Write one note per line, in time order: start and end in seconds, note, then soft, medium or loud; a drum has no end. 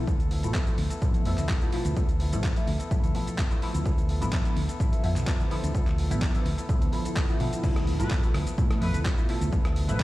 0.07 0.45 D2 loud
0.07 0.20 F3 medium
0.07 0.20 B3 medium
0.07 0.20 E4 loud
0.07 0.18 A4 loud
0.07 kick loud
0.07 shaker medium
0.20 0.30 B3 soft
0.20 0.31 E4 medium
0.20 0.31 A4 medium
0.20 closed hi-hat soft
0.20 shaker soft
0.30 0.43 F3 medium
0.30 0.44 B3 medium
0.30 0.43 E4 medium
0.30 0.42 A4 medium
0.30 open hi-hat loud
0.30 tambourine loud
0.43 0.52 A1 loud
0.43 0.64 B2 medium
0.43 0.65 F3 medium
0.43 0.65 A3 medium
0.43 0.54 B3 medium
0.43 0.65 E4 loud
0.43 0.54 E4 medium
0.43 0.55 A4 medium
0.43 closed hi-hat medium
0.43 shaker medium
0.54 0.67 F3 medium
0.54 0.67 B3 medium
0.54 0.67 E4 loud
0.54 0.65 A4 medium
0.54 kick loud
0.54 clap loud
0.54 shaker medium
0.67 0.81 B2 medium
0.67 0.81 F3 medium
0.67 0.81 A3 medium
0.67 0.92 B3 soft
0.67 0.90 E4 medium
0.67 0.81 E4 medium
0.67 0.89 A4 medium
0.67 closed hi-hat medium
0.67 shaker soft
0.78 0.88 D2 medium
0.78 open hi-hat loud
0.78 tambourine loud
0.90 1.15 B3 soft
0.90 1.14 E4 medium
0.90 1.13 A4 medium
0.90 closed hi-hat medium
0.90 tambourine soft
0.90 shaker medium
1.02 1.11 A1 medium
1.02 1.23 B2 loud
1.02 1.23 F3 medium
1.02 1.24 A3 medium
1.02 1.24 E4 loud
1.02 kick loud
1.02 tambourine soft
1.02 shaker medium
1.14 1.25 B3 medium
1.14 1.26 E4 medium
1.14 1.25 A4 medium
1.14 closed hi-hat soft
1.14 shaker soft
1.25 1.35 F2 medium
1.25 1.59 B2 medium
1.25 1.38 F3 medium
1.25 1.59 F3 medium
1.25 1.59 A3 medium
1.25 1.38 B3 medium
1.25 1.38 E4 medium
1.25 1.59 E4 medium
1.25 1.36 A4 medium
1.25 open hi-hat loud
1.25 tambourine medium
1.38 1.47 D2 medium
1.38 1.48 B3 soft
1.38 1.49 E4 medium
1.38 1.49 A4 medium
1.38 clap soft
1.38 closed hi-hat medium
1.38 tambourine soft
1.38 shaker medium
1.49 1.71 F3 medium
1.49 1.72 B3 medium
1.49 1.73 E4 medium
1.49 1.74 A4 loud
1.49 kick loud
1.49 clap loud
1.49 shaker medium
1.61 1.72 B2 medium
1.61 1.72 F3 medium
1.61 1.72 A3 medium
1.61 1.72 E4 medium
1.61 closed hi-hat soft
1.61 tambourine soft
1.61 shaker soft
1.72 1.95 B2 loud
1.72 1.95 F3 medium
1.72 1.96 F3 medium
1.72 1.96 A3 medium
1.72 1.96 B3 medium
1.72 1.96 E4 loud
1.72 1.96 E4 medium
1.72 1.97 A4 medium
1.72 open hi-hat loud
1.72 tambourine medium
1.85 1.94 D2 loud
1.85 closed hi-hat medium
1.85 tambourine soft
1.85 shaker medium
1.96 2.09 F3 loud
1.96 2.09 B3 medium
1.96 2.09 E4 medium
1.96 2.08 A4 loud
1.96 kick loud
1.96 tambourine medium
1.96 shaker medium
2.09 2.20 B3 soft
2.09 2.20 E4 medium
2.09 2.20 A4 medium
2.09 closed hi-hat soft
2.09 shaker soft
2.20 2.33 F3 medium
2.20 2.33 B3 medium
2.20 2.33 E4 medium
2.20 2.31 A4 medium
2.20 open hi-hat loud
2.20 tambourine medium
2.32 2.41 A1 loud
2.32 2.53 B2 medium
2.32 2.54 F3 medium
2.32 2.54 A3 medium
2.32 2.43 B3 soft
2.32 2.54 E4 loud
2.32 2.44 E4 medium
2.32 2.44 A4 medium
2.32 closed hi-hat medium
2.32 tambourine soft
2.32 shaker medium
2.44 2.56 F3 medium
2.44 2.57 B3 medium
2.44 2.56 E4 medium
2.44 2.55 A4 loud
2.44 kick loud
2.44 clap loud
2.44 shaker medium
2.56 2.70 B2 medium
2.56 2.70 F3 medium
2.56 2.70 A3 medium
2.56 2.81 B3 medium
2.56 2.70 E4 medium
2.56 2.80 E4 medium
2.56 2.78 A4 medium
2.56 closed hi-hat medium
2.56 shaker soft
2.67 2.77 D2 loud
2.67 open hi-hat loud
2.67 tambourine medium
2.79 3.04 B3 medium
2.79 3.03 E4 medium
2.79 3.02 A4 medium
2.79 closed hi-hat medium
2.79 tambourine soft
2.79 shaker medium
2.91 3.01 A1 medium
2.91 3.12 B2 loud
2.91 3.12 F3 medium
2.91 3.12 A3 medium
2.91 3.13 E4 loud
2.91 kick loud
2.91 tambourine medium
2.91 shaker medium
3.03 3.12 D2 medium
3.03 3.14 B3 medium
3.03 3.15 E4 medium
3.03 3.15 A4 medium
3.03 closed hi-hat medium
3.03 shaker soft
3.14 3.48 B2 medium
3.14 3.27 F3 medium
3.14 3.48 F3 medium
3.14 3.48 A3 medium
3.14 3.27 B3 medium
3.14 3.48 E4 medium
3.14 3.27 E4 medium
3.14 3.25 A4 medium
3.14 open hi-hat loud
3.14 tambourine medium
3.26 3.37 B3 soft
3.26 3.38 E4 medium
3.26 3.38 A4 medium
3.26 closed hi-hat medium
3.26 tambourine soft
3.26 shaker medium
3.38 3.60 F3 medium
3.38 3.61 B3 medium
3.38 3.62 E4 medium
3.38 3.63 A4 loud
3.38 kick loud
3.38 clap loud
3.38 shaker medium
3.50 3.60 B2 medium
3.50 3.60 F3 medium
3.50 3.60 A3 medium
3.50 3.61 E4 medium
3.50 closed hi-hat soft
3.50 tambourine soft
3.50 shaker soft
3.61 3.84 B2 loud
3.61 3.84 F3 medium
3.61 3.84 A3 medium
3.61 3.84 B3 medium
3.61 3.85 E4 loud
3.61 3.85 E4 medium
3.61 3.85 A4 medium
3.61 open hi-hat loud
3.61 tambourine medium
3.73 3.83 D2 medium
3.73 closed hi-hat medium
3.73 tambourine soft
3.73 shaker medium
3.85 4.07 F3 medium
3.85 4.08 B3 medium
3.85 4.09 E4 medium
3.85 4.10 A4 loud
3.85 kick loud
3.85 tambourine medium
3.85 shaker medium
3.98 closed hi-hat soft
3.98 shaker soft
4.08 4.21 F3 medium
4.08 4.22 B3 medium
4.08 4.21 E4 medium
4.08 4.20 A4 medium
4.08 open hi-hat loud
4.08 tambourine medium
4.21 4.30 A1 loud
4.21 4.42 D3 loud
4.21 4.42 F3 medium
4.21 4.42 B3 medium
4.21 4.32 B3 medium
4.21 4.43 E4 loud
4.21 4.33 E4 medium
4.21 4.33 A4 medium
4.21 closed hi-hat medium
4.21 tambourine soft
4.21 shaker medium
4.32 4.45 F3 medium
4.32 4.46 B3 medium
4.32 4.45 E4 medium
4.32 4.43 A4 loud
4.32 kick loud
4.32 clap loud
4.32 shaker medium
4.44 4.59 D3 medium
4.44 4.59 F3 medium
4.44 4.59 B3 medium
4.44 4.69 B3 soft
4.44 4.59 E4 medium
4.44 4.68 E4 medium
4.44 4.67 A4 medium
4.44 closed hi-hat medium
4.44 shaker soft
4.55 4.66 D2 loud
4.55 open hi-hat loud
4.55 tambourine loud
4.68 4.93 B3 medium
4.68 4.92 E4 medium
4.68 4.91 A4 medium
4.68 closed hi-hat medium
4.68 tambourine soft
4.68 shaker medium
4.80 4.90 A1 medium
4.80 5.01 D3 loud
4.80 5.01 F3 medium
4.80 5.01 B3 medium
4.80 5.01 E4 loud
4.80 kick loud
4.80 shaker medium
4.92 5.03 B3 medium
4.92 5.03 E4 medium
4.92 5.04 A4 medium
4.92 closed hi-hat medium
4.92 shaker soft
5.03 5.13 F2 medium
5.03 5.37 D3 medium
5.03 5.16 F3 medium
5.03 5.37 F3 medium
5.03 5.37 B3 medium
5.03 5.16 B3 medium
5.03 5.37 E4 medium
5.03 5.16 E4 medium
5.03 5.14 A4 medium
5.03 open hi-hat loud
5.03 tambourine medium
5.16 5.25 B1 medium
5.16 5.26 B3 medium
5.16 5.27 E4 medium
5.16 5.27 A4 medium
5.16 clap soft
5.16 closed hi-hat medium
5.16 tambourine soft
5.16 shaker medium
5.27 5.49 F3 medium
5.27 5.50 B3 medium
5.27 5.51 E4 medium
5.27 5.52 A4 loud
5.27 kick loud
5.27 clap loud
5.27 shaker medium
5.39 5.49 D3 medium
5.39 5.49 F3 medium
5.39 5.49 B3 medium
5.39 5.50 E4 medium
5.39 closed hi-hat soft
5.39 tambourine soft
5.39 shaker soft
5.50 5.73 D3 loud
5.50 5.73 F3 medium
5.50 5.73 B3 medium
5.50 5.74 B3 medium
5.50 5.73 E4 loud
5.50 5.74 E4 medium
5.50 5.75 A4 medium
5.50 open hi-hat loud
5.50 tambourine medium
5.63 5.72 D2 loud
5.63 closed hi-hat medium
5.63 tambourine soft
5.63 shaker medium
5.74 6.12 D2 loud
5.74 5.97 F3 medium
5.74 5.97 B3 medium
5.74 5.98 E4 loud
5.74 5.99 A4 loud
5.74 kick loud
5.74 tambourine soft
5.74 shaker medium
5.87 clap soft
5.87 closed hi-hat soft
5.87 tambourine soft
5.87 shaker soft
5.98 6.11 F3 medium
5.98 6.11 B3 medium
5.98 6.10 E4 medium
5.98 6.09 A4 medium
5.98 open hi-hat loud
5.98 tambourine medium
6.10 6.19 A1 loud
6.10 6.31 D3 medium
6.10 6.31 F3 medium
6.10 6.31 B3 medium
6.10 6.21 B3 medium
6.10 6.32 E4 loud
6.10 6.22 E4 medium
6.10 6.22 A4 medium
6.10 closed hi-hat medium
6.10 tambourine soft
6.10 shaker medium
6.21 6.34 F3 medium
6.21 6.35 B3 medium
6.21 6.34 E4 medium
6.21 6.33 A4 loud
6.21 kick loud
6.21 clap loud
6.21 shaker medium
6.34 6.48 D3 medium
6.34 6.48 F3 medium
6.34 6.48 B3 medium
6.34 6.59 B3 medium
6.34 6.48 E4 medium
6.34 6.58 E4 medium
6.34 6.56 A4 medium
6.34 closed hi-hat medium
6.34 tambourine soft
6.34 shaker soft
6.45 6.55 D2 loud
6.45 open hi-hat loud
6.45 tambourine medium
6.57 6.82 B3 medium
6.57 6.81 E4 medium
6.57 6.80 A4 medium
6.57 closed hi-hat medium
6.57 tambourine soft
6.57 shaker medium
6.69 6.79 A1 loud
6.69 6.90 D3 loud
6.69 6.90 F3 medium
6.69 6.90 B3 medium
6.69 6.91 E4 loud
6.69 kick loud
6.69 tambourine soft
6.69 shaker medium
6.81 6.90 D2 medium
6.81 6.92 B3 medium
6.81 6.93 E4 medium
6.81 6.92 A4 medium
6.81 closed hi-hat medium
6.81 tambourine soft
6.81 shaker soft
6.92 7.26 D3 medium
6.92 7.05 F3 medium
6.92 7.26 F3 medium
6.92 7.26 B3 medium
6.92 7.05 B3 medium
6.92 7.26 E4 medium
6.92 7.05 E4 medium
6.92 7.04 A4 medium
6.92 open hi-hat loud
6.92 tambourine medium
7.05 7.16 B3 soft
7.05 7.16 E4 medium
7.05 7.16 A4 medium
7.05 closed hi-hat medium
7.05 tambourine soft
7.05 shaker medium
7.16 7.38 F3 medium
7.16 7.39 B3 medium
7.16 7.40 E4 loud
7.16 7.41 A4 loud
7.16 kick loud
7.16 clap loud
7.16 shaker medium
7.28 7.38 D3 medium
7.28 7.38 F3 medium
7.28 7.39 B3 medium
7.28 7.39 E4 medium
7.28 closed hi-hat soft
7.28 tambourine soft
7.28 shaker soft
7.39 7.50 B2 loud
7.39 7.62 D3 loud
7.39 7.62 F3 medium
7.39 7.63 B3 medium
7.39 7.63 E4 loud
7.39 7.63 E4 medium
7.39 7.64 A4 medium
7.39 open hi-hat loud
7.39 tambourine medium
7.52 closed hi-hat medium
7.52 tambourine soft
7.52 shaker medium
7.63 8.01 D2 loud
7.63 7.95 B2 loud
7.63 8.00 F3 medium
7.63 7.95 F3 medium
7.63 7.95 A3 medium
7.63 8.00 B3 medium
7.63 7.95 E4 loud
7.63 7.99 E4 loud
7.63 7.98 A4 loud
7.63 kick loud
7.63 crash loud
7.63 impact medium
7.63 shaker medium
7.76 cross-stick medium
7.76 closed hi-hat soft
7.76 shaker soft
7.87 open hi-hat loud
7.99 8.08 A1 loud
7.99 8.20 B2 medium
7.99 8.20 F3 medium
7.99 8.20 A3 medium
7.99 8.10 B3 medium
7.99 8.21 E4 loud
7.99 8.10 E4 medium
7.99 8.11 A4 medium
7.99 8.15 B4 medium
7.99 closed hi-hat medium
7.99 shaker medium
8.10 8.32 F3 medium
8.10 8.33 B3 medium
8.10 8.34 E4 medium
8.10 8.35 A4 loud
8.10 kick loud
8.10 clap loud
8.10 shaker medium
8.23 8.37 B2 medium
8.23 8.37 F3 medium
8.23 8.37 A3 medium
8.23 8.37 E4 medium
8.23 closed hi-hat medium
8.23 shaker soft
8.34 8.44 D2 loud
8.34 8.70 F3 medium
8.34 8.71 B3 medium
8.34 8.70 E4 medium
8.34 8.69 A4 medium
8.34 cross-stick medium
8.34 open hi-hat loud
8.47 closed hi-hat medium
8.47 shaker medium
8.58 8.68 A1 medium
8.58 8.79 B2 loud
8.58 8.79 F3 medium
8.58 8.79 A3 medium
8.58 8.79 E4 loud
8.58 kick loud
8.58 shaker medium
8.70 8.81 B3 soft
8.70 8.81 E4 medium
8.70 8.81 A4 medium
8.70 cross-stick medium
8.70 closed hi-hat medium
8.70 shaker soft
8.81 8.91 F2 medium
8.81 9.15 B2 medium
8.81 8.94 F3 medium
8.81 9.15 F3 medium
8.81 9.15 A3 medium
8.81 8.94 B3 medium
8.81 9.15 E4 medium
8.81 8.94 E4 medium
8.81 8.92 A4 medium
8.81 8.98 B4 medium
8.81 open hi-hat loud
8.93 9.03 D2 medium
8.93 9.04 B3 soft
8.93 9.05 E4 medium
8.93 9.05 A4 medium
8.93 closed hi-hat medium
8.93 shaker medium
9.05 9.18 F3 medium
9.05 9.18 B3 medium
9.05 9.17 E4 loud
9.05 9.16 A4 loud
9.05 kick loud
9.05 clap loud
9.05 shaker medium
9.17 9.27 B2 medium
9.17 9.27 F3 medium
9.17 9.28 A3 medium
9.17 9.28 B3 medium
9.17 9.28 E4 medium
9.17 9.29 E4 medium
9.17 9.29 A4 medium
9.17 closed hi-hat soft
9.17 shaker soft
9.28 9.51 B2 loud
9.28 9.51 F3 medium
9.28 9.52 A3 medium
9.28 9.51 B3 medium
9.28 9.52 E4 loud
9.28 9.52 E4 medium
9.28 9.53 A4 medium
9.28 open hi-hat loud
9.41 9.50 D2 loud
9.41 closed hi-hat medium
9.41 shaker medium
9.52 9.90 D2 loud
9.52 9.88 F3 medium
9.52 9.89 B3 loud
9.52 9.88 E4 loud
9.52 9.87 A4 loud
9.52 kick loud
9.52 shaker medium
9.65 cross-stick medium
9.65 closed hi-hat soft
9.65 shaker soft
9.76 open hi-hat loud
9.88 9.97 A1 loud
9.88 10.03 B2 medium
9.88 10.03 F3 medium
9.88 10.03 A3 medium
9.88 9.99 B3 medium
9.88 10.03 E4 loud
9.88 10.00 E4 medium
9.88 10.00 A4 medium
9.88 10.03 B4 loud
9.88 closed hi-hat medium
9.88 shaker medium
10.00 kick loud